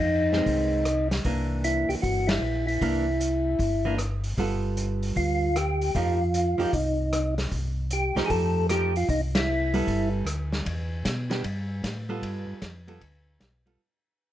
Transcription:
0.00 0.42 F2 medium
0.00 1.08 D#4 medium
0.33 0.83 D#3 medium
0.33 0.83 G#3 medium
0.33 0.84 C4 medium
0.33 snare soft
0.46 1.20 C2 medium
0.46 kick soft
0.46 open hi-hat soft
0.85 cross-stick medium
0.85 closed hi-hat medium
1.11 snare medium
1.11 open hi-hat soft
1.25 1.85 C2 medium
1.25 2.34 E3 medium
1.25 2.35 A#3 medium
1.25 2.35 D4 medium
1.25 kick soft
1.25 open hi-hat soft
1.64 1.90 E4 medium
1.64 closed hi-hat medium
1.89 1.96 C2 soft
1.89 1.95 G4 medium
1.89 open hi-hat soft
2.02 2.39 G1 medium
2.02 2.29 F#4 medium
2.02 kick soft
2.02 open hi-hat soft
2.27 2.66 E4 medium
2.27 snare medium
2.27 ride medium
2.41 2.78 A#1 medium
2.67 3.95 E4 medium
2.67 open hi-hat soft
2.81 3.56 C2 medium
2.81 3.05 E3 medium
2.81 3.05 A#3 medium
2.81 3.05 D4 medium
2.81 kick soft
2.81 open hi-hat soft
3.21 closed hi-hat soft
3.59 4.34 G1 medium
3.59 kick soft
3.59 open hi-hat soft
3.85 3.97 E3 medium
3.85 3.98 A#3 medium
3.85 3.98 D4 medium
3.98 cross-stick medium
3.98 closed hi-hat soft
4.24 open hi-hat soft
4.37 5.12 G1 medium
4.37 5.48 G3 medium
4.37 5.48 B3 medium
4.37 5.48 F4 medium
4.37 5.48 A4 medium
4.37 kick soft
4.37 open hi-hat soft
4.77 closed hi-hat soft
5.03 open hi-hat soft
5.16 5.91 D2 medium
5.16 5.57 F4 medium
5.16 kick soft
5.16 open hi-hat soft
5.56 5.97 G4 loud
5.56 cross-stick medium
5.56 closed hi-hat soft
5.81 open hi-hat soft
5.95 6.56 F2 medium
5.95 6.18 F3 medium
5.95 6.19 A3 soft
5.95 6.19 D#4 medium
5.95 6.76 F4 medium
5.95 6.19 G4 medium
5.95 kick soft
5.95 open hi-hat soft
6.34 closed hi-hat soft
6.58 6.66 F2 soft
6.58 6.71 F3 medium
6.58 6.72 A3 medium
6.58 6.72 D#4 medium
6.58 6.72 G4 medium
6.58 open hi-hat soft
6.73 7.48 C2 medium
6.73 7.34 D#4 medium
6.73 kick soft
6.73 open hi-hat soft
7.13 cross-stick medium
7.13 closed hi-hat medium
7.38 snare soft
7.38 open hi-hat soft
7.51 8.12 C2 medium
7.51 kick soft
7.51 open hi-hat soft
7.91 8.16 G4 medium
7.91 closed hi-hat medium
8.15 8.22 C2 soft
8.15 8.67 F3 medium
8.15 8.67 A3 medium
8.15 8.67 D#4 medium
8.15 8.67 G4 medium
8.15 8.21 C5 medium
8.15 snare soft
8.15 open hi-hat soft
8.26 9.04 F2 medium
8.26 8.31 G#4 medium
8.30 8.67 A4 medium
8.30 kick soft
8.30 open hi-hat soft
8.69 8.93 F3 medium
8.69 8.93 A3 medium
8.69 8.93 D#4 medium
8.69 8.96 G4 medium
8.69 8.93 G4 medium
8.69 cross-stick medium
8.69 closed hi-hat medium
8.96 9.09 F4 medium
8.96 open hi-hat soft
9.09 9.83 C2 medium
9.09 9.21 D#4 medium
9.09 kick soft
9.09 open hi-hat soft
9.35 10.09 E4 medium
9.35 snare medium
9.35 ride medium
9.74 10.24 G3 medium
9.74 10.24 B3 medium
9.74 10.25 A4 medium
9.74 open hi-hat soft
9.87 10.24 G1 medium
9.87 kick soft
9.87 open hi-hat soft
10.25 10.62 D2 medium
10.25 cross-stick medium
10.25 closed hi-hat medium
10.53 snare soft
10.65 11.03 E2 medium
10.65 kick soft
10.65 ride soft
11.05 11.43 B2 medium
11.05 kick soft
11.05 snare medium
11.05 hi-hat pedal medium
11.05 ride medium
11.30 11.42 E3 medium
11.30 11.43 B3 medium
11.30 11.43 D4 medium
11.30 11.43 G4 medium
11.30 snare medium
11.30 ride soft
11.44 11.82 G2 medium
11.44 kick soft
11.44 ride medium
11.83 12.21 A2 medium
11.83 kick soft
11.83 snare medium
11.83 hi-hat pedal soft
11.83 ride medium
12.09 12.59 G3 medium
12.09 12.59 B3 medium
12.09 12.60 F4 medium
12.09 12.59 A4 medium
12.22 12.46 G2 medium
12.22 kick soft
12.22 ride soft
12.47 12.54 G2 soft
12.62 13.00 F2 medium
12.62 kick soft
12.62 snare medium
12.62 hi-hat pedal medium
12.62 ride medium
12.87 13.00 G3 soft
12.87 13.00 B3 soft
12.87 13.00 F4 medium
12.87 13.00 A4 medium
12.87 ride soft
13.01 13.39 D2 medium
13.01 kick soft
13.01 ride soft
13.40 13.78 B1 medium
13.40 kick soft
13.40 snare medium
13.40 hi-hat pedal soft
13.40 ride medium
13.66 13.79 G3 medium
13.66 13.80 B3 medium
13.66 13.80 F4 medium
13.66 13.80 A4 medium
13.66 ride soft

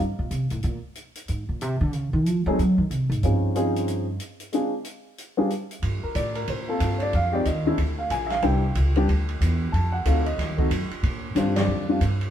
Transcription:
0.00 0.18 G2 medium
0.19 0.30 A#2 medium
0.31 0.50 C3 medium
0.31 closed hi-hat medium
0.50 0.63 A2 medium
0.50 closed hi-hat soft
0.63 0.76 A#2 medium
0.63 closed hi-hat soft
0.95 closed hi-hat soft
1.15 closed hi-hat medium
1.28 1.48 G#2 medium
1.28 closed hi-hat soft
1.49 1.62 A#2 medium
1.61 1.80 C3 medium
1.61 closed hi-hat medium
1.81 1.93 D3 loud
1.93 2.12 C#3 medium
1.93 closed hi-hat soft
2.13 2.26 D#3 loud
2.26 2.45 F3 medium
2.26 closed hi-hat soft
2.46 2.57 F#3 medium
2.46 2.58 G#3 loud
2.46 2.58 A3 medium
2.46 2.57 C4 medium
2.46 2.58 D#4 medium
2.46 2.58 G#4 medium
2.59 2.77 F#3 medium
2.59 closed hi-hat soft
2.78 2.90 D#3 medium
2.91 3.09 C3 medium
2.91 closed hi-hat soft
3.10 3.22 G#2 medium
3.10 closed hi-hat soft
3.23 4.16 G2 medium
3.23 3.54 F3 medium
3.23 3.54 C4 medium
3.23 3.54 C#4 medium
3.23 3.55 D#4 medium
3.23 3.55 G#4 medium
3.23 closed hi-hat soft
3.55 4.04 F3 medium
3.55 4.04 C4 medium
3.55 4.04 C#4 medium
3.55 4.05 D#4 medium
3.55 4.05 G#4 medium
3.55 closed hi-hat soft
3.76 closed hi-hat soft
3.88 closed hi-hat soft
4.20 closed hi-hat medium
4.40 closed hi-hat soft
4.53 4.71 G#3 medium
4.53 4.71 C4 medium
4.53 4.72 D4 medium
4.53 4.72 F4 medium
4.53 4.72 G#4 medium
4.53 closed hi-hat soft
4.84 closed hi-hat soft
5.18 closed hi-hat soft
5.37 5.49 G3 medium
5.37 5.49 B3 medium
5.37 5.49 D4 medium
5.37 5.49 F4 medium
5.37 5.49 G#4 medium
5.50 closed hi-hat medium
5.71 closed hi-hat soft
5.82 6.01 G2 medium
5.82 kick soft
5.82 ride medium
6.03 6.15 A#4 medium
6.03 muted upright bass stroke soft
6.15 6.47 A2 medium
6.15 6.35 D5 medium
6.15 kick soft
6.15 hi-hat pedal medium
6.15 ride medium
6.35 6.47 A#4 medium
6.35 ride soft
6.47 6.79 A#2 medium
6.47 6.79 C5 medium
6.47 kick soft
6.47 ride medium
6.68 7.10 A#3 medium
6.68 7.11 C4 medium
6.68 7.11 F4 medium
6.68 7.11 A4 medium
6.80 7.12 G2 medium
6.80 kick soft
6.80 hi-hat pedal medium
6.80 ride medium
6.98 7.00 C#5 medium
6.98 ride soft
7.02 7.13 D5 medium
7.13 7.45 F2 medium
7.13 7.33 F5 medium
7.13 kick soft
7.13 ride soft
7.32 7.43 G#3 medium
7.32 7.44 C4 medium
7.32 7.44 D#4 medium
7.32 7.44 G4 medium
7.32 7.46 D5 medium
7.45 7.77 D#2 medium
7.45 7.76 D#5 medium
7.45 kick soft
7.45 hi-hat pedal medium
7.45 ride medium
7.66 7.77 G#3 medium
7.66 7.77 C4 medium
7.66 7.77 D4 medium
7.66 7.77 E4 medium
7.77 8.09 D2 medium
7.77 kick soft
7.77 ride medium
7.99 8.10 F5 medium
8.10 8.42 A#1 medium
8.10 8.30 G#5 medium
8.10 kick soft
8.10 hi-hat pedal medium
8.10 ride medium
8.26 8.28 E5 medium
8.26 8.42 F5 medium
8.26 snare soft
8.26 ride soft
8.42 8.74 C2 medium
8.42 8.61 G3 medium
8.42 8.61 B3 medium
8.42 8.61 D4 medium
8.42 8.62 E4 medium
8.42 8.73 G5 medium
8.42 kick soft
8.42 ride medium
8.75 9.07 C#2 medium
8.75 kick soft
8.75 hi-hat pedal soft
8.75 ride medium
8.96 9.07 G3 medium
8.96 9.07 B3 medium
8.96 9.07 D4 medium
8.96 9.07 G4 medium
8.96 ride soft
9.08 9.39 D2 medium
9.08 kick soft
9.08 ride medium
9.29 ride soft
9.41 9.72 E2 medium
9.41 kick soft
9.41 hi-hat pedal medium
9.41 ride medium
9.72 10.04 F2 medium
9.72 9.92 A5 medium
9.72 kick soft
9.72 ride soft
9.92 10.04 F#5 medium
10.05 10.37 D2 medium
10.05 10.23 A3 medium
10.05 10.24 C4 medium
10.05 10.24 D#4 medium
10.05 10.24 F#4 medium
10.05 10.26 F5 medium
10.05 kick soft
10.05 hi-hat pedal medium
10.05 ride medium
10.26 10.99 D#5 medium
10.26 ride soft
10.38 10.69 D#2 medium
10.38 kick soft
10.38 snare soft
10.38 ride medium
10.58 10.69 A3 medium
10.58 10.69 C4 medium
10.58 10.69 D#4 medium
10.58 10.69 F#4 medium
10.58 kick soft
10.70 10.89 F#2 medium
10.70 kick soft
10.70 hi-hat pedal medium
10.70 ride medium
10.90 muted upright bass stroke soft
10.90 ride soft
11.03 11.34 A#2 medium
11.03 kick soft
11.03 ride medium
11.35 11.67 G2 medium
11.35 11.84 G3 medium
11.35 11.84 C4 medium
11.35 11.84 D4 medium
11.35 11.84 F4 medium
11.35 11.56 C5 medium
11.35 kick soft
11.35 snare soft
11.35 hi-hat pedal medium
11.35 ride medium
11.56 11.86 D5 medium
11.56 snare medium
11.56 ride medium
11.68 11.99 F2 medium
11.89 11.99 G3 medium
11.89 11.99 C4 medium
11.89 11.99 D4 medium
11.89 12.00 F4 medium
12.00 12.30 G2 medium
12.00 kick soft
12.00 hi-hat pedal medium
12.00 ride medium
12.21 ride soft

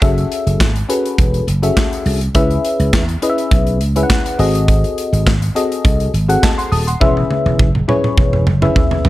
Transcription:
0.02 0.24 F#1 loud
0.02 0.70 C#4 medium
0.02 0.70 F#4 medium
0.02 0.70 G#4 medium
0.02 0.71 A4 medium
0.02 0.71 E5 medium
0.02 kick loud
0.02 closed hi-hat medium
0.18 closed hi-hat soft
0.32 closed hi-hat medium
0.47 0.57 F#1 medium
0.47 closed hi-hat soft
0.60 0.82 G#1 medium
0.60 kick loud
0.60 snare loud
0.60 clap medium
0.76 closed hi-hat medium
0.89 1.46 C#4 medium
0.89 1.46 F#4 medium
0.89 1.46 G#4 medium
0.89 1.46 A4 medium
0.89 1.46 B4 medium
0.89 closed hi-hat loud
1.06 closed hi-hat medium
1.18 1.40 E1 loud
1.18 kick loud
1.18 closed hi-hat medium
1.34 closed hi-hat medium
1.47 1.69 F#1 loud
1.47 closed hi-hat medium
1.62 2.19 C#4 medium
1.62 2.19 F#4 medium
1.62 2.19 G#4 medium
1.62 2.20 A4 medium
1.62 2.20 E5 medium
1.62 closed hi-hat medium
1.77 kick loud
1.77 snare loud
1.77 clap medium
1.93 closed hi-hat medium
2.06 2.28 C2 loud
2.06 open hi-hat medium
2.21 closed hi-hat medium
2.35 2.57 C#2 loud
2.35 3.03 C#4 loud
2.35 3.03 E4 medium
2.35 3.04 G#4 medium
2.35 3.04 B4 medium
2.35 3.04 E5 loud
2.35 kick loud
2.35 closed hi-hat medium
2.50 closed hi-hat soft
2.65 closed hi-hat medium
2.80 2.90 C#2 loud
2.80 closed hi-hat medium
2.93 3.15 E2 loud
2.93 kick loud
2.93 snare loud
2.93 clap loud
3.09 closed hi-hat medium
3.22 3.79 C#4 medium
3.22 3.79 E4 medium
3.22 3.79 G#4 medium
3.22 3.79 B4 medium
3.22 3.30 D#5 medium
3.22 closed hi-hat loud
3.29 3.83 E5 loud
3.38 closed hi-hat medium
3.51 3.81 B1 medium
3.51 kick loud
3.51 closed hi-hat medium
3.67 closed hi-hat medium
3.81 4.03 C#2 medium
3.81 closed hi-hat medium
3.96 4.39 C#4 medium
3.96 4.39 E4 medium
3.96 4.38 G#4 medium
3.96 4.39 B4 medium
3.96 4.02 E5 medium
3.96 closed hi-hat medium
4.03 4.42 F#5 medium
4.10 kick loud
4.10 snare loud
4.10 clap loud
4.26 closed hi-hat medium
4.39 4.83 G#1 loud
4.39 5.32 C4 loud
4.39 5.32 F#4 medium
4.39 5.32 G#4 medium
4.39 5.33 A4 medium
4.39 5.33 D#5 loud
4.39 open hi-hat medium
4.55 closed hi-hat medium
4.68 kick loud
4.68 closed hi-hat medium
4.84 closed hi-hat soft
4.98 closed hi-hat medium
5.13 5.23 G#1 medium
5.13 closed hi-hat medium
5.27 5.48 G#1 medium
5.27 kick loud
5.27 snare loud
5.27 clap medium
5.42 closed hi-hat medium
5.55 6.12 C4 medium
5.55 6.12 F#4 medium
5.55 6.12 G#4 medium
5.55 6.12 A4 medium
5.55 6.12 D#5 loud
5.55 closed hi-hat loud
5.72 closed hi-hat medium
5.85 6.07 C2 loud
5.85 kick loud
5.85 closed hi-hat medium
6.00 closed hi-hat medium
6.14 6.36 G#1 loud
6.14 closed hi-hat medium
6.28 6.85 C4 medium
6.28 6.85 F#4 medium
6.28 6.85 G#4 medium
6.28 6.86 A4 medium
6.28 6.43 F#5 loud
6.28 closed hi-hat medium
6.43 6.58 D#5 medium
6.43 6.57 A5 medium
6.43 kick loud
6.43 snare loud
6.43 clap loud
6.58 6.71 F#5 medium
6.58 6.71 C6 medium
6.58 closed hi-hat medium
6.72 6.94 D#1 medium
6.72 6.87 A5 medium
6.72 6.86 D#6 medium
6.72 open hi-hat medium
6.87 7.15 F#5 medium
6.87 7.15 C6 medium
6.87 closed hi-hat medium
7.00 7.23 E1 loud
7.00 7.69 C#4 loud
7.00 7.69 E4 medium
7.00 7.69 G#4 medium
7.00 7.70 B4 medium
7.00 7.70 E5 loud
7.00 kick loud
7.00 high tom medium
7.17 high tom medium
7.31 high tom medium
7.46 7.60 E1 medium
7.46 high tom medium
7.59 7.81 F#1 loud
7.59 kick loud
7.59 mid tom medium
7.75 mid tom medium
7.88 8.45 C#4 medium
7.88 8.45 E4 medium
7.88 8.45 G#4 medium
7.88 8.45 B4 medium
7.88 8.45 C#5 loud
7.88 mid tom medium
8.04 mid tom medium
8.17 8.47 E1 loud
8.17 kick loud
8.17 mid tom loud
8.33 mid tom medium
8.47 8.69 F#1 medium
8.47 mid tom loud
8.62 9.09 C#4 medium
8.62 9.09 E4 medium
8.62 9.09 G#4 medium
8.62 9.09 B4 medium
8.62 9.09 E5 loud
8.62 mid tom loud
8.76 kick loud
8.76 floor tom loud
8.91 floor tom medium
9.05 9.09 F1 medium
9.05 floor tom loud

